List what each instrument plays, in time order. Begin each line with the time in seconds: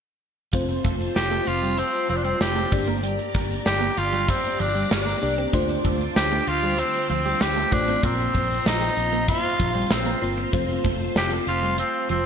0.53 fingered electric bass F1, clean electric guitar F3, fm electric piano A3 C4 F4 C5, string machine F4 C5 A5 C6, kick, closed hi-hat
0.69 muted clean electric guitar stroke, closed hi-hat
0.84 fingered electric bass F1, clean electric guitar A3, kick, closed hi-hat
1.01 closed hi-hat
1.16 fingered electric bass F1, tenor saxophone G4, snare
1.31 clean electric guitar A3, closed hi-hat
1.47 fingered electric bass F1, tenor saxophone F4, muted clean electric guitar stroke, closed hi-hat
1.62 clean electric guitar G3, closed hi-hat
1.78 tenor saxophone C4, muted clean electric guitar stroke, closed hi-hat
1.94 closed hi-hat
2.09 fingered electric bass F1, clean electric guitar F3, tenor saxophone C4, closed hi-hat
2.17 tenor saxophone D4
2.24 clean electric guitar G3, tenor saxophone C4, closed hi-hat
2.41 fingered electric bass F1, tenor saxophone G4, snare
2.56 clean electric guitar A3, closed hi-hat
2.72 fingered electric bass G1, fm electric piano G2 A#3 D4 G4 D5, string machine G4 D5 A#5 D6, muted clean electric guitar stroke, kick, open hi-hat
2.88 clean electric guitar A#3, closed hi-hat
3.03 clean electric guitar G3, closed hi-hat
3.19 muted clean electric guitar stroke, closed hi-hat
3.34 fingered electric bass G1, clean electric guitar A#3, kick, closed hi-hat
3.51 closed hi-hat
3.66 fingered electric bass G1, tenor saxophone G4, snare
3.81 clean electric guitar A#3, closed hi-hat
3.97 fingered electric bass G1, tenor saxophone F4, muted clean electric guitar stroke, closed hi-hat
4.13 clean electric guitar G3, closed hi-hat
4.28 tenor saxophone C4, muted clean electric guitar stroke, kick, closed hi-hat
4.44 closed hi-hat
4.60 fingered electric bass G1, clean electric guitar F3, tenor saxophone D4, closed hi-hat
4.75 clean electric guitar G3, closed hi-hat
4.91 fingered electric bass G1, tenor saxophone D4, snare
5.07 clean electric guitar A#3, closed hi-hat
5.22 fingered electric bass C2, fm electric piano A#3 D4 G4 D5, muted clean electric guitar stroke, open hi-hat
5.38 clean electric guitar C4, closed hi-hat
5.53 fingered electric bass D2, fm electric piano D3 A3 D4 F4 C5, clean electric guitar D4, string machine F4 C5 A5, kick, closed hi-hat
5.69 muted clean electric guitar stroke, closed hi-hat
5.84 fingered electric bass D2, clean electric guitar A3, kick, closed hi-hat
6.01 closed hi-hat
6.16 fingered electric bass D2, tenor saxophone G4, snare
6.32 clean electric guitar A3, closed hi-hat
6.47 fingered electric bass D2, tenor saxophone F4, muted clean electric guitar stroke, closed hi-hat
6.63 clean electric guitar G3, closed hi-hat
6.78 tenor saxophone C4, muted clean electric guitar stroke, closed hi-hat
6.94 closed hi-hat
7.10 fingered electric bass D2, clean electric guitar F3, tenor saxophone C4, closed hi-hat
7.25 clean electric guitar G3, closed hi-hat
7.41 fingered electric bass D2, tenor saxophone G4, snare
7.57 clean electric guitar A3, closed hi-hat
7.71 fingered electric bass A1, fm electric piano A3 D4 F4 C5, tenor saxophone D4, muted clean electric guitar stroke, kick, open hi-hat
7.88 clean electric guitar C4, closed hi-hat
8.03 fingered electric bass A#1, fm electric piano A#2 A#3 C4 F4 C5, clean electric guitar A#3, tenor saxophone C4, string machine C5 A#5 C6, kick, closed hi-hat
8.19 muted clean electric guitar stroke, closed hi-hat
8.35 fingered electric bass A#1, clean electric guitar C4, kick, closed hi-hat
8.51 closed hi-hat
8.66 fingered electric bass A#1, tenor saxophone D#4, snare
8.81 clean electric guitar C4, closed hi-hat
8.97 fingered electric bass A#1, muted clean electric guitar stroke, closed hi-hat
9.12 clean electric guitar A#3, closed hi-hat
9.28 tenor saxophone F4, muted clean electric guitar stroke, kick, closed hi-hat
9.44 closed hi-hat
9.59 fingered electric bass A#1, clean electric guitar F3, kick, closed hi-hat
9.75 clean electric guitar G3, closed hi-hat
9.91 fingered electric bass A#1, tenor saxophone C4, snare
10.06 clean electric guitar A#3, closed hi-hat
10.21 fingered electric bass G1, fm electric piano A#3 C4 F4 C5, muted clean electric guitar stroke, open hi-hat
10.38 clean electric guitar C4, closed hi-hat
10.52 fingered electric bass F1, clean electric guitar F3, fm electric piano A3 C4 F4 C5, string machine A5, kick, closed hi-hat
10.69 muted clean electric guitar stroke, closed hi-hat
10.84 fingered electric bass F1, clean electric guitar A3, kick, closed hi-hat
11.00 closed hi-hat
11.15 fingered electric bass F1, tenor saxophone G4, snare
11.32 clean electric guitar A3, closed hi-hat
11.47 fingered electric bass F1, tenor saxophone F4, muted clean electric guitar stroke, closed hi-hat
11.62 clean electric guitar G3, closed hi-hat
11.78 tenor saxophone C4, muted clean electric guitar stroke, closed hi-hat
11.94 closed hi-hat
12.09 fingered electric bass F1, clean electric guitar F3, tenor saxophone C4, closed hi-hat